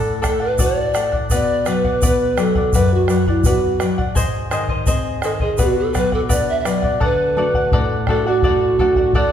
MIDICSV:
0, 0, Header, 1, 6, 480
1, 0, Start_track
1, 0, Tempo, 712589
1, 880, Time_signature, 2, 2, 24, 8
1, 6279, End_track
2, 0, Start_track
2, 0, Title_t, "Charango"
2, 0, Program_c, 0, 24
2, 0, Note_on_c, 0, 69, 69
2, 0, Note_on_c, 0, 74, 64
2, 0, Note_on_c, 0, 78, 69
2, 139, Note_off_c, 0, 69, 0
2, 142, Note_off_c, 0, 74, 0
2, 145, Note_off_c, 0, 78, 0
2, 147, Note_on_c, 0, 69, 58
2, 150, Note_on_c, 0, 74, 52
2, 153, Note_on_c, 0, 78, 60
2, 260, Note_off_c, 0, 78, 0
2, 268, Note_on_c, 0, 78, 47
2, 270, Note_off_c, 0, 74, 0
2, 274, Note_off_c, 0, 69, 0
2, 278, Note_on_c, 0, 74, 38
2, 389, Note_off_c, 0, 74, 0
2, 394, Note_off_c, 0, 78, 0
2, 396, Note_on_c, 0, 69, 67
2, 397, Note_on_c, 0, 74, 63
2, 404, Note_on_c, 0, 78, 71
2, 622, Note_off_c, 0, 69, 0
2, 630, Note_on_c, 0, 69, 51
2, 631, Note_off_c, 0, 74, 0
2, 635, Note_off_c, 0, 78, 0
2, 639, Note_on_c, 0, 74, 50
2, 643, Note_on_c, 0, 78, 63
2, 745, Note_off_c, 0, 78, 0
2, 753, Note_on_c, 0, 78, 43
2, 754, Note_off_c, 0, 74, 0
2, 756, Note_off_c, 0, 69, 0
2, 762, Note_on_c, 0, 74, 39
2, 875, Note_off_c, 0, 74, 0
2, 877, Note_off_c, 0, 78, 0
2, 879, Note_on_c, 0, 71, 62
2, 883, Note_on_c, 0, 74, 73
2, 889, Note_on_c, 0, 78, 64
2, 1107, Note_off_c, 0, 71, 0
2, 1116, Note_off_c, 0, 74, 0
2, 1116, Note_off_c, 0, 78, 0
2, 1116, Note_on_c, 0, 71, 50
2, 1124, Note_on_c, 0, 74, 57
2, 1124, Note_on_c, 0, 78, 60
2, 1235, Note_off_c, 0, 78, 0
2, 1238, Note_off_c, 0, 71, 0
2, 1242, Note_off_c, 0, 74, 0
2, 1243, Note_on_c, 0, 78, 49
2, 1253, Note_on_c, 0, 74, 39
2, 1358, Note_off_c, 0, 74, 0
2, 1359, Note_off_c, 0, 78, 0
2, 1365, Note_on_c, 0, 71, 71
2, 1366, Note_on_c, 0, 74, 74
2, 1367, Note_on_c, 0, 78, 72
2, 1593, Note_off_c, 0, 71, 0
2, 1598, Note_off_c, 0, 74, 0
2, 1601, Note_on_c, 0, 71, 48
2, 1604, Note_off_c, 0, 78, 0
2, 1606, Note_on_c, 0, 74, 52
2, 1611, Note_on_c, 0, 78, 61
2, 1712, Note_off_c, 0, 78, 0
2, 1720, Note_on_c, 0, 78, 52
2, 1721, Note_off_c, 0, 71, 0
2, 1723, Note_off_c, 0, 74, 0
2, 1730, Note_on_c, 0, 74, 40
2, 1841, Note_off_c, 0, 78, 0
2, 1842, Note_off_c, 0, 74, 0
2, 1848, Note_on_c, 0, 71, 67
2, 1850, Note_on_c, 0, 74, 76
2, 1855, Note_on_c, 0, 78, 70
2, 2070, Note_off_c, 0, 71, 0
2, 2078, Note_on_c, 0, 71, 52
2, 2080, Note_off_c, 0, 74, 0
2, 2081, Note_off_c, 0, 78, 0
2, 2088, Note_on_c, 0, 74, 56
2, 2089, Note_on_c, 0, 78, 54
2, 2199, Note_off_c, 0, 71, 0
2, 2199, Note_off_c, 0, 78, 0
2, 2205, Note_off_c, 0, 74, 0
2, 2207, Note_on_c, 0, 78, 50
2, 2213, Note_on_c, 0, 74, 35
2, 2321, Note_off_c, 0, 74, 0
2, 2324, Note_off_c, 0, 78, 0
2, 2325, Note_on_c, 0, 71, 64
2, 2329, Note_on_c, 0, 74, 71
2, 2332, Note_on_c, 0, 78, 75
2, 2547, Note_off_c, 0, 71, 0
2, 2553, Note_off_c, 0, 74, 0
2, 2555, Note_off_c, 0, 78, 0
2, 2555, Note_on_c, 0, 71, 51
2, 2561, Note_on_c, 0, 74, 53
2, 2563, Note_on_c, 0, 78, 55
2, 2672, Note_off_c, 0, 78, 0
2, 2678, Note_off_c, 0, 71, 0
2, 2678, Note_off_c, 0, 74, 0
2, 2680, Note_on_c, 0, 78, 51
2, 2686, Note_on_c, 0, 74, 44
2, 2796, Note_on_c, 0, 68, 74
2, 2801, Note_off_c, 0, 74, 0
2, 2801, Note_off_c, 0, 78, 0
2, 2803, Note_on_c, 0, 72, 80
2, 2804, Note_on_c, 0, 75, 79
2, 3028, Note_off_c, 0, 68, 0
2, 3032, Note_off_c, 0, 72, 0
2, 3036, Note_on_c, 0, 68, 57
2, 3039, Note_off_c, 0, 75, 0
2, 3040, Note_on_c, 0, 72, 68
2, 3047, Note_on_c, 0, 75, 75
2, 3153, Note_off_c, 0, 75, 0
2, 3159, Note_off_c, 0, 68, 0
2, 3161, Note_off_c, 0, 72, 0
2, 3161, Note_on_c, 0, 75, 59
2, 3170, Note_on_c, 0, 72, 42
2, 3275, Note_off_c, 0, 72, 0
2, 3278, Note_off_c, 0, 75, 0
2, 3279, Note_on_c, 0, 68, 79
2, 3283, Note_on_c, 0, 72, 81
2, 3286, Note_on_c, 0, 75, 85
2, 3519, Note_off_c, 0, 68, 0
2, 3523, Note_off_c, 0, 72, 0
2, 3524, Note_off_c, 0, 75, 0
2, 3527, Note_on_c, 0, 68, 54
2, 3532, Note_on_c, 0, 72, 55
2, 3535, Note_on_c, 0, 75, 58
2, 3634, Note_off_c, 0, 75, 0
2, 3642, Note_on_c, 0, 75, 48
2, 3644, Note_off_c, 0, 72, 0
2, 3645, Note_off_c, 0, 68, 0
2, 3652, Note_on_c, 0, 72, 41
2, 3756, Note_off_c, 0, 75, 0
2, 3759, Note_on_c, 0, 71, 62
2, 3762, Note_off_c, 0, 72, 0
2, 3764, Note_on_c, 0, 74, 66
2, 3766, Note_on_c, 0, 78, 70
2, 3986, Note_off_c, 0, 71, 0
2, 3994, Note_on_c, 0, 71, 50
2, 3995, Note_off_c, 0, 74, 0
2, 3999, Note_off_c, 0, 78, 0
2, 4003, Note_on_c, 0, 74, 58
2, 4007, Note_on_c, 0, 78, 59
2, 4115, Note_off_c, 0, 78, 0
2, 4118, Note_off_c, 0, 71, 0
2, 4123, Note_off_c, 0, 74, 0
2, 4123, Note_on_c, 0, 78, 46
2, 4131, Note_on_c, 0, 74, 40
2, 4230, Note_off_c, 0, 74, 0
2, 4235, Note_off_c, 0, 78, 0
2, 4238, Note_on_c, 0, 71, 62
2, 4238, Note_on_c, 0, 74, 76
2, 4243, Note_on_c, 0, 78, 71
2, 4472, Note_off_c, 0, 71, 0
2, 4473, Note_off_c, 0, 74, 0
2, 4480, Note_on_c, 0, 71, 53
2, 4481, Note_on_c, 0, 74, 57
2, 4483, Note_off_c, 0, 78, 0
2, 4492, Note_on_c, 0, 78, 51
2, 4585, Note_off_c, 0, 78, 0
2, 4593, Note_on_c, 0, 78, 46
2, 4597, Note_off_c, 0, 74, 0
2, 4601, Note_off_c, 0, 71, 0
2, 4605, Note_on_c, 0, 74, 41
2, 4713, Note_off_c, 0, 78, 0
2, 4714, Note_off_c, 0, 74, 0
2, 4717, Note_on_c, 0, 69, 66
2, 4721, Note_on_c, 0, 78, 78
2, 4722, Note_on_c, 0, 74, 66
2, 4955, Note_off_c, 0, 69, 0
2, 4961, Note_off_c, 0, 78, 0
2, 4962, Note_off_c, 0, 74, 0
2, 4963, Note_on_c, 0, 69, 51
2, 4970, Note_on_c, 0, 74, 55
2, 4976, Note_on_c, 0, 78, 65
2, 5077, Note_off_c, 0, 78, 0
2, 5082, Note_off_c, 0, 69, 0
2, 5084, Note_off_c, 0, 74, 0
2, 5085, Note_on_c, 0, 78, 51
2, 5092, Note_on_c, 0, 74, 40
2, 5200, Note_off_c, 0, 74, 0
2, 5203, Note_off_c, 0, 78, 0
2, 5206, Note_on_c, 0, 69, 78
2, 5208, Note_on_c, 0, 74, 83
2, 5213, Note_on_c, 0, 78, 88
2, 5438, Note_off_c, 0, 69, 0
2, 5444, Note_off_c, 0, 74, 0
2, 5446, Note_on_c, 0, 69, 57
2, 5447, Note_off_c, 0, 78, 0
2, 5457, Note_on_c, 0, 74, 56
2, 5458, Note_on_c, 0, 78, 69
2, 5559, Note_off_c, 0, 78, 0
2, 5564, Note_off_c, 0, 69, 0
2, 5567, Note_on_c, 0, 78, 46
2, 5569, Note_off_c, 0, 74, 0
2, 5579, Note_on_c, 0, 74, 42
2, 5677, Note_off_c, 0, 74, 0
2, 5681, Note_on_c, 0, 69, 65
2, 5684, Note_off_c, 0, 78, 0
2, 5685, Note_on_c, 0, 74, 74
2, 5691, Note_on_c, 0, 78, 73
2, 5913, Note_off_c, 0, 69, 0
2, 5919, Note_off_c, 0, 74, 0
2, 5922, Note_on_c, 0, 69, 59
2, 5926, Note_off_c, 0, 78, 0
2, 5927, Note_on_c, 0, 74, 61
2, 5934, Note_on_c, 0, 78, 71
2, 6030, Note_off_c, 0, 78, 0
2, 6038, Note_on_c, 0, 78, 50
2, 6041, Note_off_c, 0, 69, 0
2, 6044, Note_off_c, 0, 74, 0
2, 6052, Note_on_c, 0, 74, 43
2, 6157, Note_off_c, 0, 74, 0
2, 6159, Note_off_c, 0, 78, 0
2, 6161, Note_on_c, 0, 69, 75
2, 6165, Note_on_c, 0, 74, 80
2, 6168, Note_on_c, 0, 78, 86
2, 6279, Note_off_c, 0, 69, 0
2, 6279, Note_off_c, 0, 74, 0
2, 6279, Note_off_c, 0, 78, 0
2, 6279, End_track
3, 0, Start_track
3, 0, Title_t, "Pan flute"
3, 0, Program_c, 1, 75
3, 0, Note_on_c, 1, 69, 80
3, 137, Note_off_c, 1, 69, 0
3, 180, Note_on_c, 1, 69, 82
3, 282, Note_off_c, 1, 69, 0
3, 287, Note_on_c, 1, 71, 84
3, 419, Note_on_c, 1, 74, 94
3, 429, Note_off_c, 1, 71, 0
3, 770, Note_off_c, 1, 74, 0
3, 904, Note_on_c, 1, 74, 97
3, 1116, Note_off_c, 1, 74, 0
3, 1141, Note_on_c, 1, 71, 89
3, 1620, Note_on_c, 1, 69, 76
3, 1630, Note_off_c, 1, 71, 0
3, 1850, Note_off_c, 1, 69, 0
3, 1859, Note_on_c, 1, 71, 84
3, 1981, Note_on_c, 1, 66, 71
3, 1991, Note_off_c, 1, 71, 0
3, 2207, Note_off_c, 1, 66, 0
3, 2211, Note_on_c, 1, 64, 68
3, 2337, Note_on_c, 1, 66, 69
3, 2347, Note_off_c, 1, 64, 0
3, 2689, Note_off_c, 1, 66, 0
3, 3531, Note_on_c, 1, 69, 76
3, 3572, Note_off_c, 1, 69, 0
3, 3652, Note_on_c, 1, 68, 71
3, 3781, Note_on_c, 1, 66, 80
3, 3791, Note_off_c, 1, 68, 0
3, 3898, Note_on_c, 1, 69, 78
3, 3908, Note_off_c, 1, 66, 0
3, 4016, Note_on_c, 1, 71, 89
3, 4026, Note_off_c, 1, 69, 0
3, 4129, Note_off_c, 1, 71, 0
3, 4139, Note_on_c, 1, 69, 81
3, 4179, Note_off_c, 1, 69, 0
3, 4250, Note_on_c, 1, 74, 92
3, 4358, Note_off_c, 1, 74, 0
3, 4375, Note_on_c, 1, 76, 93
3, 4436, Note_off_c, 1, 76, 0
3, 4447, Note_on_c, 1, 76, 67
3, 4497, Note_on_c, 1, 74, 82
3, 4507, Note_off_c, 1, 76, 0
3, 4741, Note_on_c, 1, 71, 97
3, 4751, Note_off_c, 1, 74, 0
3, 5238, Note_off_c, 1, 71, 0
3, 5448, Note_on_c, 1, 69, 82
3, 5569, Note_on_c, 1, 66, 84
3, 5579, Note_off_c, 1, 69, 0
3, 6165, Note_on_c, 1, 74, 95
3, 6175, Note_off_c, 1, 66, 0
3, 6279, Note_off_c, 1, 74, 0
3, 6279, End_track
4, 0, Start_track
4, 0, Title_t, "Nylon-string guitar"
4, 0, Program_c, 2, 24
4, 0, Note_on_c, 2, 45, 60
4, 160, Note_on_c, 2, 57, 50
4, 393, Note_off_c, 2, 57, 0
4, 403, Note_on_c, 2, 66, 54
4, 635, Note_off_c, 2, 66, 0
4, 644, Note_on_c, 2, 57, 46
4, 855, Note_off_c, 2, 45, 0
4, 875, Note_off_c, 2, 57, 0
4, 892, Note_on_c, 2, 47, 62
4, 1124, Note_on_c, 2, 54, 51
4, 1355, Note_off_c, 2, 54, 0
4, 1363, Note_on_c, 2, 59, 50
4, 1595, Note_off_c, 2, 59, 0
4, 1599, Note_on_c, 2, 54, 47
4, 1820, Note_off_c, 2, 47, 0
4, 1833, Note_off_c, 2, 54, 0
4, 1844, Note_on_c, 2, 42, 60
4, 2076, Note_on_c, 2, 54, 50
4, 2311, Note_off_c, 2, 54, 0
4, 2326, Note_on_c, 2, 59, 52
4, 2557, Note_off_c, 2, 59, 0
4, 2571, Note_on_c, 2, 54, 47
4, 2776, Note_off_c, 2, 42, 0
4, 2799, Note_off_c, 2, 54, 0
4, 2810, Note_on_c, 2, 44, 59
4, 3043, Note_on_c, 2, 51, 50
4, 3275, Note_off_c, 2, 51, 0
4, 3283, Note_on_c, 2, 60, 55
4, 3515, Note_off_c, 2, 60, 0
4, 3527, Note_on_c, 2, 51, 50
4, 3739, Note_off_c, 2, 44, 0
4, 3757, Note_off_c, 2, 51, 0
4, 3764, Note_on_c, 2, 47, 62
4, 4006, Note_on_c, 2, 54, 50
4, 4237, Note_off_c, 2, 54, 0
4, 4246, Note_on_c, 2, 62, 52
4, 4477, Note_off_c, 2, 62, 0
4, 4480, Note_on_c, 2, 54, 44
4, 4696, Note_off_c, 2, 47, 0
4, 4713, Note_off_c, 2, 54, 0
4, 4721, Note_on_c, 2, 50, 63
4, 4961, Note_on_c, 2, 57, 47
4, 4965, Note_on_c, 2, 62, 43
4, 4969, Note_on_c, 2, 66, 52
4, 5187, Note_off_c, 2, 50, 0
4, 5203, Note_on_c, 2, 45, 70
4, 5345, Note_off_c, 2, 57, 0
4, 5348, Note_off_c, 2, 62, 0
4, 5349, Note_off_c, 2, 66, 0
4, 5436, Note_on_c, 2, 57, 48
4, 5443, Note_on_c, 2, 62, 43
4, 5446, Note_on_c, 2, 66, 49
4, 5667, Note_off_c, 2, 45, 0
4, 5693, Note_on_c, 2, 45, 64
4, 5822, Note_off_c, 2, 57, 0
4, 5826, Note_off_c, 2, 62, 0
4, 5826, Note_off_c, 2, 66, 0
4, 5922, Note_on_c, 2, 57, 46
4, 5926, Note_on_c, 2, 62, 44
4, 5930, Note_on_c, 2, 66, 58
4, 6152, Note_off_c, 2, 45, 0
4, 6160, Note_on_c, 2, 45, 67
4, 6279, Note_off_c, 2, 45, 0
4, 6279, Note_off_c, 2, 57, 0
4, 6279, Note_off_c, 2, 62, 0
4, 6279, Note_off_c, 2, 66, 0
4, 6279, End_track
5, 0, Start_track
5, 0, Title_t, "Bombo"
5, 161, Note_on_c, 9, 37, 55
5, 161, Note_on_c, 9, 43, 55
5, 228, Note_off_c, 9, 37, 0
5, 228, Note_off_c, 9, 43, 0
5, 394, Note_on_c, 9, 43, 68
5, 461, Note_off_c, 9, 43, 0
5, 638, Note_on_c, 9, 37, 51
5, 705, Note_off_c, 9, 37, 0
5, 759, Note_on_c, 9, 43, 52
5, 827, Note_off_c, 9, 43, 0
5, 874, Note_on_c, 9, 43, 57
5, 941, Note_off_c, 9, 43, 0
5, 1120, Note_on_c, 9, 37, 47
5, 1187, Note_off_c, 9, 37, 0
5, 1239, Note_on_c, 9, 43, 47
5, 1306, Note_off_c, 9, 43, 0
5, 1362, Note_on_c, 9, 43, 71
5, 1430, Note_off_c, 9, 43, 0
5, 1600, Note_on_c, 9, 37, 58
5, 1667, Note_off_c, 9, 37, 0
5, 1718, Note_on_c, 9, 43, 59
5, 1785, Note_off_c, 9, 43, 0
5, 1836, Note_on_c, 9, 43, 67
5, 1903, Note_off_c, 9, 43, 0
5, 2074, Note_on_c, 9, 37, 49
5, 2142, Note_off_c, 9, 37, 0
5, 2201, Note_on_c, 9, 43, 48
5, 2269, Note_off_c, 9, 43, 0
5, 2314, Note_on_c, 9, 43, 72
5, 2382, Note_off_c, 9, 43, 0
5, 2559, Note_on_c, 9, 37, 54
5, 2627, Note_off_c, 9, 37, 0
5, 2683, Note_on_c, 9, 43, 54
5, 2750, Note_off_c, 9, 43, 0
5, 2800, Note_on_c, 9, 43, 64
5, 2867, Note_off_c, 9, 43, 0
5, 3040, Note_on_c, 9, 37, 49
5, 3108, Note_off_c, 9, 37, 0
5, 3153, Note_on_c, 9, 43, 45
5, 3221, Note_off_c, 9, 43, 0
5, 3276, Note_on_c, 9, 43, 65
5, 3343, Note_off_c, 9, 43, 0
5, 3516, Note_on_c, 9, 37, 53
5, 3584, Note_off_c, 9, 37, 0
5, 3635, Note_on_c, 9, 43, 55
5, 3703, Note_off_c, 9, 43, 0
5, 3763, Note_on_c, 9, 43, 64
5, 3830, Note_off_c, 9, 43, 0
5, 4008, Note_on_c, 9, 37, 49
5, 4008, Note_on_c, 9, 43, 46
5, 4075, Note_off_c, 9, 37, 0
5, 4075, Note_off_c, 9, 43, 0
5, 4125, Note_on_c, 9, 43, 47
5, 4192, Note_off_c, 9, 43, 0
5, 4241, Note_on_c, 9, 43, 65
5, 4309, Note_off_c, 9, 43, 0
5, 4482, Note_on_c, 9, 37, 52
5, 4549, Note_off_c, 9, 37, 0
5, 4600, Note_on_c, 9, 43, 49
5, 4667, Note_off_c, 9, 43, 0
5, 4720, Note_on_c, 9, 43, 55
5, 4788, Note_off_c, 9, 43, 0
5, 5077, Note_on_c, 9, 43, 50
5, 5144, Note_off_c, 9, 43, 0
5, 5198, Note_on_c, 9, 43, 65
5, 5265, Note_off_c, 9, 43, 0
5, 5435, Note_on_c, 9, 37, 47
5, 5435, Note_on_c, 9, 43, 49
5, 5503, Note_off_c, 9, 37, 0
5, 5503, Note_off_c, 9, 43, 0
5, 5673, Note_on_c, 9, 43, 64
5, 5740, Note_off_c, 9, 43, 0
5, 5918, Note_on_c, 9, 43, 51
5, 5985, Note_off_c, 9, 43, 0
5, 6033, Note_on_c, 9, 43, 52
5, 6100, Note_off_c, 9, 43, 0
5, 6152, Note_on_c, 9, 43, 61
5, 6220, Note_off_c, 9, 43, 0
5, 6279, End_track
6, 0, Start_track
6, 0, Title_t, "Drums"
6, 158, Note_on_c, 9, 82, 65
6, 225, Note_off_c, 9, 82, 0
6, 394, Note_on_c, 9, 82, 90
6, 462, Note_off_c, 9, 82, 0
6, 636, Note_on_c, 9, 82, 58
6, 703, Note_off_c, 9, 82, 0
6, 879, Note_on_c, 9, 82, 88
6, 946, Note_off_c, 9, 82, 0
6, 1117, Note_on_c, 9, 82, 59
6, 1184, Note_off_c, 9, 82, 0
6, 1361, Note_on_c, 9, 82, 83
6, 1429, Note_off_c, 9, 82, 0
6, 1601, Note_on_c, 9, 82, 55
6, 1668, Note_off_c, 9, 82, 0
6, 1843, Note_on_c, 9, 82, 86
6, 1910, Note_off_c, 9, 82, 0
6, 2082, Note_on_c, 9, 82, 56
6, 2150, Note_off_c, 9, 82, 0
6, 2319, Note_on_c, 9, 82, 76
6, 2387, Note_off_c, 9, 82, 0
6, 2563, Note_on_c, 9, 82, 51
6, 2630, Note_off_c, 9, 82, 0
6, 2804, Note_on_c, 9, 82, 80
6, 2871, Note_off_c, 9, 82, 0
6, 3042, Note_on_c, 9, 82, 53
6, 3109, Note_off_c, 9, 82, 0
6, 3279, Note_on_c, 9, 82, 73
6, 3347, Note_off_c, 9, 82, 0
6, 3521, Note_on_c, 9, 82, 53
6, 3588, Note_off_c, 9, 82, 0
6, 3758, Note_on_c, 9, 82, 76
6, 3825, Note_off_c, 9, 82, 0
6, 4003, Note_on_c, 9, 82, 58
6, 4070, Note_off_c, 9, 82, 0
6, 4246, Note_on_c, 9, 82, 85
6, 4313, Note_off_c, 9, 82, 0
6, 4486, Note_on_c, 9, 82, 55
6, 4553, Note_off_c, 9, 82, 0
6, 6279, End_track
0, 0, End_of_file